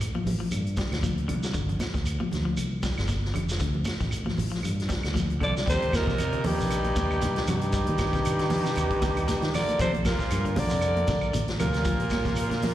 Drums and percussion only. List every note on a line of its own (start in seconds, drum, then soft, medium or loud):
0.01 closed hi-hat medium
0.01 claves medium
0.01 shekere medium
0.15 high conga medium
0.26 open hi-hat medium
0.26 low conga medium
0.26 shekere soft
0.51 closed hi-hat medium
0.51 high conga medium
0.51 claves medium
0.51 shekere medium
0.67 closed hi-hat soft
0.77 kick medium
0.77 snare medium
0.77 closed hi-hat medium
0.77 high conga medium
0.77 shekere medium
0.92 snare medium
0.92 closed hi-hat soft
0.92 claves medium
0.92 shekere soft
1.03 kick medium
1.03 closed hi-hat medium
1.03 high conga medium
1.03 shekere medium
1.18 closed hi-hat soft
1.29 closed hi-hat soft
1.29 low conga medium
1.29 claves medium
1.29 shekere soft
1.43 snare medium
1.43 shekere medium
1.54 kick medium
1.54 closed hi-hat medium
1.54 shekere medium
1.69 closed hi-hat soft
1.69 low conga medium
1.80 snare medium
1.80 closed hi-hat soft
1.80 high conga medium
1.80 claves medium
1.80 shekere medium
1.94 kick medium
1.94 snare soft
1.94 closed hi-hat soft
1.94 shekere soft
2.05 closed hi-hat medium
2.05 claves medium
2.05 shekere medium
2.20 high conga medium
2.32 snare soft
2.32 closed hi-hat soft
2.32 low conga medium
2.32 shekere soft
2.57 closed hi-hat medium
2.57 high conga medium
2.57 claves medium
2.57 shekere medium
2.83 kick medium
2.83 snare medium
2.83 closed hi-hat medium
2.83 high conga medium
2.83 shekere medium
2.98 snare medium
2.98 claves medium
2.98 shekere soft
3.08 kick medium
3.08 snare soft
3.08 closed hi-hat medium
3.08 high conga medium
3.08 shekere medium
3.25 snare soft
3.34 closed hi-hat soft
3.34 low conga medium
3.34 claves medium
3.34 shekere soft
3.49 snare medium
3.49 closed hi-hat soft
3.49 shekere medium
3.60 kick medium
3.60 closed hi-hat medium
3.60 shekere medium
3.74 low conga medium
3.84 snare medium
3.84 closed hi-hat soft
3.84 high conga medium
3.84 claves medium
3.84 shekere medium
4.00 kick medium
4.00 snare soft
4.00 closed hi-hat soft
4.00 shekere soft
4.11 closed hi-hat medium
4.11 claves medium
4.11 shekere medium
4.26 snare soft
4.26 high conga medium
4.37 open hi-hat medium
4.37 low conga medium
4.37 shekere soft
4.55 snare soft
4.63 closed hi-hat medium
4.63 claves medium
4.63 shekere medium
4.80 snare soft
4.80 closed hi-hat soft
4.89 kick medium
4.89 snare medium
4.89 closed hi-hat soft
4.89 high conga medium
4.89 shekere medium
5.03 snare medium
5.03 closed hi-hat soft
5.03 claves medium
5.03 shekere soft
5.15 kick medium
5.15 snare soft
5.15 closed hi-hat medium
5.15 high conga medium
5.15 shekere medium
5.30 closed hi-hat soft
5.41 kick soft
5.41 high conga medium
5.41 low conga medium
5.41 claves medium
5.41 shekere soft
5.57 snare medium
5.57 shekere medium
5.67 kick loud
5.67 closed hi-hat medium
5.67 shekere medium
5.82 closed hi-hat soft
5.93 kick medium
5.93 snare medium
5.93 closed hi-hat soft
5.93 high conga medium
5.93 claves medium
5.93 shekere medium
6.07 kick medium
6.07 snare soft
6.07 low conga medium
6.07 shekere soft
6.18 closed hi-hat medium
6.18 claves medium
6.18 shekere medium
6.32 closed hi-hat soft
6.44 open hi-hat medium
6.44 high conga loud
6.44 low conga medium
6.44 shekere soft
6.60 shekere medium
6.70 closed hi-hat medium
6.70 claves medium
6.70 shekere medium
6.84 closed hi-hat soft
6.84 high conga medium
6.96 kick medium
6.96 closed hi-hat medium
6.96 high conga loud
6.96 shekere medium
7.11 claves medium
7.11 shekere soft
7.21 closed hi-hat medium
7.21 high conga medium
7.21 shekere medium
7.36 snare medium
7.36 closed hi-hat soft
7.47 closed hi-hat medium
7.47 low conga medium
7.47 claves medium
7.47 shekere medium
7.61 closed hi-hat soft
7.61 shekere soft
7.72 kick medium
7.72 closed hi-hat medium
7.72 shekere medium
7.86 closed hi-hat soft
7.86 high conga medium
7.98 kick medium
7.98 snare medium
7.98 closed hi-hat medium
7.98 high conga medium
7.98 claves medium
7.98 shekere medium
8.13 kick medium
8.13 snare soft
8.13 closed hi-hat soft
8.13 shekere soft
8.25 closed hi-hat medium
8.25 claves medium
8.25 shekere medium
8.39 snare soft
8.39 closed hi-hat soft
8.50 snare soft
8.50 open hi-hat medium
8.50 high conga loud
8.50 low conga medium
8.50 shekere soft
8.66 snare soft
8.66 shekere medium
8.76 closed hi-hat medium
8.76 claves medium
8.76 shekere medium
8.91 kick medium
8.91 closed hi-hat soft
9.02 kick medium
9.02 snare soft
9.02 closed hi-hat medium
9.02 high conga loud
9.02 shekere medium
9.16 closed hi-hat soft
9.16 claves medium
9.16 shekere soft
9.28 snare soft
9.28 closed hi-hat medium
9.28 high conga medium
9.28 shekere medium
9.42 snare medium
9.42 closed hi-hat soft
9.54 open hi-hat medium
9.54 low conga medium
9.54 claves medium
9.54 shekere medium
9.68 closed hi-hat soft
9.68 high conga medium
9.68 shekere soft
9.79 kick loud
9.79 closed hi-hat medium
9.79 shekere medium
9.93 closed hi-hat soft
9.93 high conga medium
10.05 kick medium
10.05 snare medium
10.05 closed hi-hat medium
10.05 high conga medium
10.05 claves medium
10.05 shekere medium
10.19 kick medium
10.19 snare soft
10.19 shekere soft
10.30 closed hi-hat medium
10.30 claves medium
10.30 shekere medium
10.45 closed hi-hat soft
10.56 open hi-hat medium
10.56 high conga loud
10.56 low conga medium
10.56 shekere soft
10.70 shekere medium
10.81 closed hi-hat medium
10.81 claves medium
10.81 shekere medium
10.96 closed hi-hat soft
10.96 high conga medium
11.07 kick medium
11.07 snare soft
11.07 closed hi-hat medium
11.07 high conga loud
11.07 shekere loud
11.21 claves medium
11.21 shekere soft
11.33 closed hi-hat medium
11.33 high conga medium
11.33 shekere medium
11.48 snare medium
11.48 closed hi-hat soft
11.60 closed hi-hat medium
11.60 low conga medium
11.60 claves medium
11.60 shekere medium
11.73 snare soft
11.73 closed hi-hat soft
11.73 shekere soft
11.85 kick medium
11.85 closed hi-hat medium
11.85 shekere medium
12.00 closed hi-hat soft
12.00 high conga medium
12.10 kick medium
12.10 snare medium
12.10 closed hi-hat medium
12.10 high conga medium
12.10 claves medium
12.10 shekere medium
12.25 kick medium
12.25 snare soft
12.25 closed hi-hat soft
12.25 low conga medium
12.25 shekere soft
12.36 closed hi-hat medium
12.36 claves medium
12.36 shekere medium
12.51 snare soft
12.51 closed hi-hat soft
12.51 high conga medium
12.62 snare soft
12.62 open hi-hat medium
12.62 high conga loud
12.62 low conga medium
12.62 shekere soft